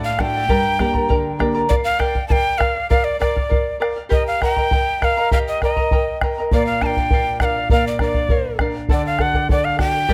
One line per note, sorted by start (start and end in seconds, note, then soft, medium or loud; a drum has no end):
0.00 0.48 A2 medium
0.00 0.18 A4 medium
0.00 0.19 D5 medium
0.00 0.19 F#5 medium
0.04 0.22 F5 medium
0.19 0.44 A3 soft
0.19 0.44 D4 soft
0.19 0.44 F#4 medium
0.19 0.34 A4 medium
0.19 0.35 D5 medium
0.19 0.33 F#5 medium
0.19 1.41 G5 loud
0.19 bombo rim medium
0.19 bombo low soft
0.34 0.48 D5 soft
0.34 0.49 F#5 soft
0.49 1.08 G2 medium
0.49 0.79 G4 medium
0.49 0.78 A#4 medium
0.49 0.79 D5 medium
0.49 0.78 G5 medium
0.49 0.79 A#5 medium
0.49 bombo low medium
0.79 1.28 A#3 soft
0.79 1.28 D4 soft
0.79 1.28 G4 medium
0.79 0.94 A#4 medium
0.79 0.93 D5 medium
0.79 0.95 G5 medium
0.79 0.93 A#5 medium
0.79 bombo rim soft
0.79 bombo low soft
0.94 1.08 A#4 soft
0.94 1.08 D5 medium
0.94 1.09 A#5 medium
0.94 bombo low soft
1.08 1.69 D3 medium
1.08 1.38 A#4 medium
1.08 1.39 D5 medium
1.08 1.38 G5 medium
1.08 1.39 A#5 medium
1.08 bombo low medium
1.39 1.64 A#3 soft
1.39 1.64 D4 soft
1.39 1.64 G4 medium
1.39 1.54 A#4 medium
1.39 1.54 D5 medium
1.39 1.55 G5 medium
1.39 1.53 A#5 medium
1.39 bombo rim medium
1.39 bombo low medium
1.55 1.68 A#4 soft
1.55 1.69 D5 soft
1.55 1.70 A#5 medium
1.69 1.98 A#4 medium
1.69 1.75 D5 medium
1.69 1.99 D5 medium
1.69 2.00 F5 medium
1.69 bombo low medium
1.84 2.01 F5 loud
1.99 2.15 A#4 medium
1.99 2.15 D5 medium
1.99 2.14 F5 medium
1.99 2.27 G5 medium
1.99 bombo rim medium
1.99 bombo low medium
2.15 2.29 D5 soft
2.15 2.30 F5 medium
2.15 bombo low medium
2.28 2.57 A#4 medium
2.28 2.58 D5 medium
2.28 2.59 F5 medium
2.28 2.60 G5 loud
2.28 2.33 A5 loud
2.28 bombo low medium
2.58 2.75 A#4 medium
2.58 2.75 D5 medium
2.58 2.89 F5 medium
2.58 2.74 F5 medium
2.58 bombo rim medium
2.58 bombo low medium
2.75 2.89 D5 soft
2.75 2.90 F5 soft
2.90 3.19 A#4 medium
2.90 3.20 D5 medium
2.90 3.06 F5 medium
2.90 3.20 F5 medium
2.90 bombo low medium
3.04 3.20 D5 medium
3.20 3.35 A#4 medium
3.20 3.77 D5 medium
3.20 3.36 D5 medium
3.20 3.34 F5 medium
3.20 bombo rim soft
3.20 bombo low medium
3.35 3.49 D5 soft
3.35 3.49 F5 medium
3.35 bombo low medium
3.49 3.79 A#4 medium
3.49 3.79 D5 medium
3.49 3.80 F5 medium
3.49 bombo low medium
3.80 3.95 A#4 medium
3.80 3.96 D5 medium
3.80 3.95 F5 medium
3.80 bombo rim medium
3.96 4.09 D5 soft
3.96 4.10 F5 soft
4.09 4.40 G4 medium
4.09 4.41 A#4 medium
4.09 4.41 D#5 medium
4.09 4.26 D#5 medium
4.09 4.40 G5 medium
4.09 4.41 A#5 medium
4.09 bombo low medium
4.27 4.41 F5 loud
4.41 4.56 A#4 medium
4.41 4.56 D#5 medium
4.41 4.56 G5 medium
4.41 5.06 G5 loud
4.41 4.56 A#5 medium
4.41 bombo rim soft
4.41 bombo low medium
4.56 4.71 A#4 soft
4.56 4.72 D#5 soft
4.56 4.71 A#5 medium
4.56 bombo low soft
4.71 5.00 A#4 medium
4.71 5.01 D#5 medium
4.71 5.00 G5 medium
4.71 5.01 A#5 medium
4.71 bombo low medium
5.01 5.16 A#4 medium
5.01 5.17 D#5 medium
5.01 5.32 F5 loud
5.01 5.16 G5 medium
5.01 5.16 A#5 medium
5.01 bombo rim medium
5.01 bombo low medium
5.17 5.31 A#4 soft
5.17 5.31 D#5 soft
5.17 5.31 A#5 medium
5.31 5.61 G4 medium
5.31 5.61 A#4 medium
5.31 5.62 D#5 medium
5.31 5.39 F5 medium
5.31 5.61 G5 medium
5.31 5.62 A#5 medium
5.31 bombo low medium
5.48 5.61 D#5 medium
5.62 5.77 A#4 medium
5.62 5.76 D#5 medium
5.62 6.18 D#5 medium
5.62 5.76 G5 medium
5.62 5.76 A#5 medium
5.62 bombo rim soft
5.62 bombo low soft
5.76 5.91 A#4 soft
5.76 5.91 D#5 soft
5.76 5.91 A#5 medium
5.76 bombo low medium
5.91 6.21 A#4 medium
5.91 6.22 D#5 medium
5.91 6.21 G5 medium
5.91 6.22 A#5 medium
5.91 bombo low medium
6.21 6.37 A#4 medium
6.21 6.37 D#5 medium
6.21 6.37 G5 medium
6.21 6.37 A#5 medium
6.21 bombo rim medium
6.21 bombo low medium
6.38 6.52 A#4 soft
6.38 6.53 D#5 soft
6.38 6.52 A#5 soft
6.51 7.67 A#2 medium
6.51 6.81 A#4 medium
6.51 6.66 D5 medium
6.51 6.82 D5 medium
6.51 6.82 F5 medium
6.51 bombo low medium
6.66 6.84 F5 medium
6.81 7.10 D4 medium
6.81 6.97 A#4 medium
6.81 6.97 D5 medium
6.81 6.97 F5 medium
6.81 6.87 A5 loud
6.81 bombo rim soft
6.81 bombo low soft
6.86 7.40 G5 loud
6.97 7.12 D5 soft
6.97 7.12 F5 medium
6.97 bombo low medium
7.11 7.40 A#4 medium
7.11 7.41 D5 medium
7.11 7.41 F5 medium
7.11 bombo low medium
7.40 7.70 D4 soft
7.40 7.56 A#4 medium
7.40 7.56 D5 medium
7.40 7.55 F5 medium
7.40 7.46 F#5 medium
7.40 bombo rim medium
7.40 bombo low medium
7.45 7.69 F5 medium
7.56 7.70 D5 soft
7.56 7.70 F5 medium
7.70 8.86 A#2 medium
7.70 7.98 A#4 medium
7.70 7.99 D5 medium
7.70 8.00 F5 medium
7.70 7.85 F5 medium
7.70 bombo low medium
7.87 8.00 D5 medium
7.99 8.29 D4 medium
7.99 8.15 A#4 medium
7.99 8.15 D5 medium
7.99 8.57 D5 medium
7.99 8.13 F5 medium
7.99 bombo rim medium
7.99 bombo low medium
8.14 8.29 D5 soft
8.14 8.29 F5 medium
8.14 bombo low medium
8.29 8.58 A#4 medium
8.29 8.59 A#4 medium
8.29 8.59 D5 medium
8.29 8.60 F5 medium
8.29 bombo low medium
8.59 8.89 D4 medium
8.59 8.75 A#4 medium
8.59 8.75 D5 medium
8.59 8.73 F5 medium
8.59 bombo rim medium
8.59 bombo low medium
8.74 8.89 D5 soft
8.74 8.89 F5 soft
8.89 10.05 D3 medium
8.89 9.19 A4 medium
8.89 9.19 D5 medium
8.89 9.05 D5 medium
8.89 9.20 F#5 medium
8.89 bombo low medium
9.06 9.23 F5 medium
9.19 9.48 F#4 medium
9.19 9.35 A4 medium
9.19 9.35 D5 medium
9.19 9.34 F#5 medium
9.19 9.50 F#5 medium
9.19 bombo rim soft
9.19 bombo low medium
9.34 9.50 D5 soft
9.34 9.50 F#5 soft
9.34 bombo low medium
9.49 9.78 A4 medium
9.49 9.66 D5 medium
9.49 9.79 D5 medium
9.49 9.80 F#5 medium
9.49 bombo low medium
9.65 9.79 F5 medium
9.79 10.08 F#4 medium
9.79 9.94 A4 medium
9.79 9.93 D5 medium
9.79 9.92 F#5 medium
9.79 10.13 G5 loud
9.79 bombo rim medium
9.79 bombo low medium
9.94 10.08 D5 soft
9.94 10.09 F#5 soft
10.08 10.13 G2 medium
10.08 10.13 G4 medium
10.08 10.13 A#4 medium
10.08 10.13 D5 medium
10.08 10.13 G5 medium
10.08 10.13 A#5 medium
10.08 bombo low medium